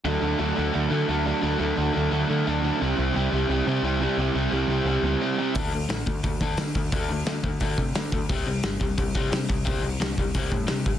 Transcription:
<<
  \new Staff \with { instrumentName = "Overdriven electric guitar" } { \time 4/4 \key d \mixolydian \tempo 4 = 175 <d fis a d' fis'>8 <d fis a d' fis'>8 <d fis a d' fis'>8 <d fis a d' fis'>8 <d fis a d' fis'>8 <d fis a d' fis'>8 <d fis a d' fis'>8 <d fis a d' fis'>8 | <d fis a d' fis'>8 <d fis a d' fis'>8 <d fis a d' fis'>8 <d fis a d' fis'>8 <d fis a d' fis'>8 <d fis a d' fis'>8 <d fis a d' fis'>8 <d fis a d' fis'>8 | <c g c' e' g'>8 <c g c' e' g'>8 <c g c' e' g'>8 <c g c' e' g'>8 <c g c' e' g'>8 <c g c' e' g'>8 <c g c' e' g'>8 <c g c' e' g'>8 | <c g c' e' g'>8 <c g c' e' g'>8 <c g c' e' g'>8 <c g c' e' g'>8 <c g c' e' g'>8 <c g c' e' g'>8 <c g c' e' g'>8 <c g c' e' g'>8 |
r1 | r1 | r1 | r1 | }
  \new Staff \with { instrumentName = "Overdriven electric guitar" } { \clef bass \time 4/4 \key d \mixolydian <d a d'>8 <d a d'>8 <d a d'>8 <d a d'>8 <d a d'>8 <d a d'>8 <d a d'>8 <d a d'>8 | <d a d'>8 <d a d'>8 <d a d'>8 <d a d'>8 <d a d'>8 <d a d'>8 <d a d'>8 <d a d'>8 | <c g c'>8 <c g c'>8 <c g c'>8 <c g c'>8 <c g c'>8 <c g c'>8 <c g c'>8 <c g c'>8 | <c g c'>8 <c g c'>8 <c g c'>8 <c g c'>8 <c g c'>8 <c g c'>8 <c g c'>8 <c g c'>8 |
<d a d'>8 <d a>8 <d a>8 <d a>8 <d a>8 <d a d'>8 <d a>8 <d a>8 | <d a d'>8 <d a>8 <d a>8 <d a>8 <d a d'>8 <d a>8 <d a>8 <d a>8 | <c g c'>8 <c g>8 <c g>8 <c g>8 <c g>8 <c g c'>8 <c g>8 <c g>8 | <c g c'>8 <c g>8 <c g>8 <c g>8 <c g c'>8 <c g>8 <c g>8 <c g>8 | }
  \new Staff \with { instrumentName = "Picked electric bass" } { \clef bass \time 4/4 \key d \mixolydian d,8 d,8 d,8 d,8 d,8 d8 d,4 | d,8 d,8 d,8 d,8 d,8 d8 d,4 | c,8 c,8 c,8 c,8 c,8 c8 c,4 | c,8 c,8 c,8 c,8 c,8 cis,8 r4 |
d,8 d,8 a,,8 d,8 d,8 d,8 d8 d,8 | d,8 d,8 d,8 d,8 d,8 c8 d8 d,8 | c,8 c,8 g,,8 c,8 c,8 c,8 c8 c,8 | c,8 c,8 c,8 c,8 c,8 a,8 c8 gis,,8 | }
  \new DrumStaff \with { instrumentName = "Drums" } \drummode { \time 4/4 r4 r4 r4 r4 | r4 r4 r4 r4 | r4 r4 r4 r4 | r4 r4 r4 r4 |
<hho bd>4 <hho sn>8 bd8 <hho bd>8 bd8 <hho sn>8 bd8 | <hho bd>4 <hho sn>8 bd8 <hho bd>8 bd8 <hho sn>8 bd8 | <hho bd>4 <hho sn>8 bd8 <hho bd>8 bd8 <hho sn>8 bd8 | <hho bd>4 <hho sn>8 bd8 <hho bd>8 bd8 <hho sn>8 bd8 | }
>>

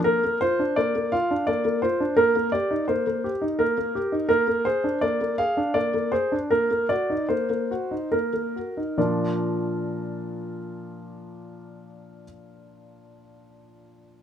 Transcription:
\new Staff \with { instrumentName = "Grand piano" } { \time 3/4 \key bes \major \tempo 4 = 78 << { bes'8 c''8 d''8 f''8 d''8 c''8 | bes'8 d''8 c''4 bes'4 | bes'8 c''8 d''8 f''8 d''8 c''8 | bes'8 d''8 c''4 bes'4 |
<bes, f d' f' bes' d''>2.~ | <bes, f d' f' bes' d''>2. | } \\ { bes16 bes16 f'16 d'16 bes16 bes16 f'16 d'16 bes16 bes16 f'16 d'16 | bes16 bes16 g'16 ees'16 bes16 bes16 g'16 ees'16 bes16 bes16 g'16 ees'16 | bes16 bes16 aes'16 d'16 bes16 bes16 aes'16 d'16 bes16 bes16 aes'16 d'16 | bes16 bes16 ges'16 ees'16 bes16 bes16 ges'16 ees'16 bes16 bes16 ges'16 ees'16 |
r2. | r2. | } >> }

